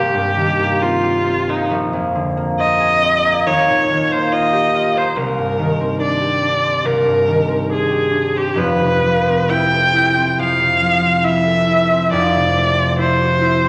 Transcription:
0.00 1.74 C2 medium
0.00 0.13 G2 soft
0.00 0.35 D#3 medium
0.00 0.58 A#3 medium
0.00 0.81 C4 medium
0.00 0.83 G4 medium
0.00 1.02 G4 medium
0.14 1.73 G2 medium
0.36 1.73 D#3 medium
0.59 1.47 A#3 medium
0.82 1.24 C4 medium
0.82 1.51 F4 medium
1.03 1.74 G4 medium
1.26 2.58 C4 medium
1.48 2.36 A#3 medium
1.48 1.71 D#4 medium
1.70 3.49 A#1 medium
1.93 3.49 F2 soft
2.15 3.49 D3 medium
2.37 3.24 A#3 medium
2.59 3.00 C4 medium
2.59 3.48 D#5 loud
2.80 3.49 G#4 medium
3.02 3.49 C4 soft
3.25 4.11 A#3 medium
3.46 5.20 D#2 medium
3.46 4.13 C#5 medium
3.69 5.21 A#2 soft
3.89 5.20 D#3 soft
4.12 4.94 A#3 soft
4.12 4.34 C5 medium
4.32 4.73 F4 medium
4.32 4.99 D#5 medium
4.53 6.20 G4 medium
4.75 5.20 F4 medium
4.95 8.60 A#3 medium
4.95 5.20 C5 medium
5.16 6.83 C2 medium
5.16 6.01 A#4 medium
5.38 7.05 G2 soft
5.59 7.26 D#3 medium
5.81 6.62 C4 medium
6.00 6.41 D4 medium
6.00 6.87 D5 medium
6.21 7.90 G4 medium
6.43 7.68 D4 medium
6.63 7.47 C4 medium
6.85 8.60 C2 medium
6.85 7.70 A#4 medium
7.06 8.60 G2 soft
7.28 8.61 D#3 medium
7.48 8.34 C4 medium
7.70 8.10 D4 medium
7.70 8.38 G#4 medium
7.91 8.60 G4 medium
8.11 8.60 D4 medium
8.35 9.26 C4 soft
8.35 8.59 G4 medium
8.55 12.10 F1 medium
8.55 10.37 F2 medium
8.55 9.51 B4 medium
8.80 10.59 C3 soft
9.02 10.80 F3 soft
9.27 10.16 C4 medium
9.50 9.94 E4 medium
9.50 10.41 G5 loud
9.72 11.45 A4 medium
9.95 11.23 E4 soft
10.17 11.01 C4 medium
10.38 12.11 F2 medium
10.38 11.26 F5 medium
10.60 12.15 C3 soft
10.81 12.15 F3 soft
11.02 11.91 C4 soft
11.24 11.67 E4 medium
11.24 12.12 E5 medium
11.46 13.69 A4 medium
11.69 12.97 E4 medium
11.92 12.77 C4 soft
12.11 13.69 F1 medium
12.11 13.69 F2 medium
12.11 12.97 D5 medium
12.35 13.69 C3 soft
12.57 13.69 A3 soft
12.79 13.63 C4 medium
12.98 13.40 E4 medium
12.98 13.69 C5 medium
13.21 13.69 F#4 medium
13.41 13.69 E4 soft
13.64 13.69 C4 medium

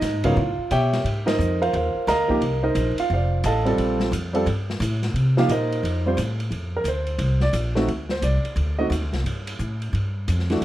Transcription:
0.00 0.35 G#2 medium
0.00 0.22 D#4 medium
0.00 0.22 D#5 medium
0.00 snare soft
0.00 hi-hat pedal medium
0.00 ride medium
0.24 0.35 C#3 medium
0.24 0.35 F#3 medium
0.24 0.36 B3 medium
0.24 0.36 D#4 medium
0.24 0.36 F4 medium
0.24 0.37 A#4 medium
0.24 0.37 C#5 medium
0.24 0.37 F5 medium
0.24 kick medium
0.24 ride medium
0.37 0.57 A2 medium
0.37 0.69 F4 medium
0.37 0.69 F5 medium
0.58 muted upright bass stroke soft
0.71 1.03 B2 medium
0.71 1.24 G4 medium
0.71 1.03 C#5 medium
0.71 1.03 E5 medium
0.71 1.24 G5 loud
0.71 hi-hat pedal soft
0.71 ride medium
0.93 snare soft
0.93 ride medium
1.04 1.38 G#2 medium
1.04 ride medium
1.26 1.58 D#4 medium
1.26 1.59 A#4 medium
1.26 1.58 C5 medium
1.26 1.59 D#5 medium
1.26 snare medium
1.26 ride medium
1.39 1.72 F2 medium
1.39 hi-hat pedal medium
1.62 1.73 F4 medium
1.62 1.73 A#4 medium
1.62 1.73 C5 medium
1.62 1.73 F5 medium
1.62 ride soft
1.73 1.94 D#2 medium
1.73 2.06 F4 medium
1.73 2.06 A#4 medium
1.73 2.06 C5 medium
1.73 2.06 F5 medium
1.73 ride medium
1.95 muted upright bass stroke soft
2.07 2.40 D2 loud
2.07 2.60 A#4 medium
2.07 2.61 D#5 medium
2.07 2.60 F5 medium
2.07 2.60 A#5 loud
2.07 snare soft
2.07 hi-hat pedal medium
2.07 ride medium
2.28 2.40 F3 medium
2.28 2.40 A#3 medium
2.28 2.41 D#4 medium
2.28 2.41 G4 medium
2.28 kick medium
2.40 2.74 C2 medium
2.40 ride medium
2.63 2.95 D#4 medium
2.63 2.96 A#4 medium
2.63 2.95 C5 medium
2.63 2.95 D#5 medium
2.75 2.96 A#1 loud
2.75 hi-hat pedal medium
2.75 ride medium
2.97 3.11 F4 medium
2.97 3.11 F5 medium
2.97 muted upright bass stroke soft
2.97 ride medium
3.10 3.43 F1 medium
3.10 3.43 C5 medium
3.10 3.44 F5 medium
3.14 3.44 F4 medium
3.14 3.44 D5 medium
3.44 3.77 A1 loud
3.44 3.66 A4 medium
3.44 3.77 D#5 medium
3.44 3.98 F5 medium
3.44 3.97 A5 medium
3.44 hi-hat pedal medium
3.44 ride medium
3.65 4.09 G3 medium
3.65 4.10 C4 medium
3.65 4.10 F4 medium
3.65 4.11 A4 medium
3.65 ride soft
3.78 4.11 A#1 medium
3.78 ride medium
4.00 snare medium
4.12 4.45 F2 loud
4.12 hi-hat pedal medium
4.12 ride medium
4.33 4.45 G3 medium
4.33 4.45 C4 medium
4.33 4.46 F4 medium
4.33 4.46 A4 medium
4.33 ride soft
4.46 4.79 G2 loud
4.46 ride medium
4.70 snare medium
4.80 5.13 A2 loud
4.80 hi-hat pedal medium
4.80 ride medium
5.03 snare soft
5.03 ride soft
5.14 5.47 C3 medium
5.14 ride medium
5.37 5.48 F3 medium
5.37 5.48 A#3 medium
5.37 5.49 D#4 medium
5.37 5.50 F4 medium
5.37 5.49 G4 medium
5.37 5.51 F5 medium
5.37 snare medium
5.49 5.82 A#2 medium
5.49 6.03 D#4 medium
5.49 5.82 A#4 medium
5.49 6.03 C5 medium
5.49 6.02 D#5 medium
5.49 hi-hat pedal medium
5.49 ride medium
5.72 ride medium
5.83 6.16 F2 medium
5.83 ride medium
6.06 6.16 G3 medium
6.06 6.17 C4 medium
6.06 6.17 F4 medium
6.06 6.18 C5 medium
6.17 6.50 A2 loud
6.17 hi-hat pedal medium
6.17 ride medium
6.40 ride soft
6.50 6.83 F2 medium
6.50 ride medium
6.76 6.87 A#4 medium
6.84 7.18 D2 medium
6.84 hi-hat pedal medium
6.84 ride medium
6.88 7.39 C5 medium
7.07 ride soft
7.18 7.52 C2 loud
7.18 ride medium
7.40 7.54 D5 medium
7.40 snare soft
7.53 7.87 A#1 loud
7.53 hi-hat pedal medium
7.53 ride medium
7.75 7.87 A3 medium
7.75 7.87 C4 medium
7.75 7.87 D#4 medium
7.75 7.87 F#4 medium
7.75 snare medium
7.87 8.21 D2 medium
7.87 ride medium
8.09 8.22 C5 medium
8.09 snare medium
8.22 8.42 C2 medium
8.22 8.75 D5 medium
8.22 hi-hat pedal medium
8.22 ride medium
8.44 muted upright bass stroke soft
8.44 ride soft
8.56 8.89 D2 loud
8.56 ride medium
8.79 8.90 A3 medium
8.79 8.90 C4 medium
8.79 8.90 D#4 medium
8.79 8.91 F#4 medium
8.79 8.86 D#5 medium
8.90 9.01 D#2 medium
8.90 hi-hat pedal medium
8.90 ride medium
9.01 9.12 D2 medium
9.12 9.23 C2 medium
9.12 snare medium
9.12 ride soft
9.24 9.58 G2 medium
9.24 ride medium
9.47 ride medium
9.59 9.92 A2 medium
9.59 hi-hat pedal medium
9.82 ride soft
9.93 10.26 G2 medium
9.93 ride medium
10.28 10.60 F2 loud
10.28 hi-hat pedal medium
10.28 ride medium
10.39 snare soft
10.50 10.65 E3 medium
10.50 10.65 A3 medium
10.50 10.65 D4 medium
10.50 10.65 F#4 medium
10.50 snare soft
10.50 ride soft
10.61 10.65 E2 medium
10.61 snare soft

